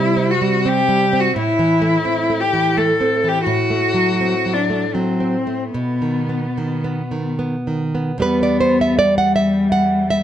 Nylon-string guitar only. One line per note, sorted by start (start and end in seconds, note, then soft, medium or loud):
0.00 1.33 C3 medium
0.00 0.33 G3 medium
0.17 0.56 C4 medium
0.42 0.80 G3 medium
0.66 1.04 C4 soft
0.89 1.27 G3 medium
1.13 1.37 C4 soft
1.36 3.42 A2 medium
1.59 1.97 E3 soft
1.82 2.20 A3 soft
2.05 2.43 C4 soft
2.30 2.67 A3 soft
2.53 2.91 E3 soft
2.78 3.15 A3 soft
3.01 3.38 C4 soft
3.24 3.47 E3 soft
3.47 5.69 A2 medium
3.70 4.09 A3 soft
3.94 4.33 F#3 soft
4.21 4.59 C4 soft
4.46 4.84 F#3 soft
4.70 5.09 A3 soft
4.95 5.35 F#3 soft
5.20 5.62 C4 soft
5.47 5.73 A3 soft
5.74 8.18 B2 medium
6.02 6.45 D#3 soft
6.29 6.73 B3 soft
6.58 7.01 D#3 soft
6.84 7.28 B3 soft
7.11 7.55 D#3 soft
7.39 7.83 B3 soft
7.67 8.11 D#3 soft
7.95 8.19 B3 soft
8.18 10.23 E2 medium
8.18 10.23 G3 soft
8.18 10.23 B3 soft
8.22 8.41 B4 medium
8.43 8.60 D5 medium
8.60 8.79 C5 medium
8.81 8.98 E5 medium
8.99 9.17 D5 medium
9.18 9.35 F#5 medium
9.36 9.71 E5 medium
9.72 10.08 F#5 medium
10.10 10.23 E5 medium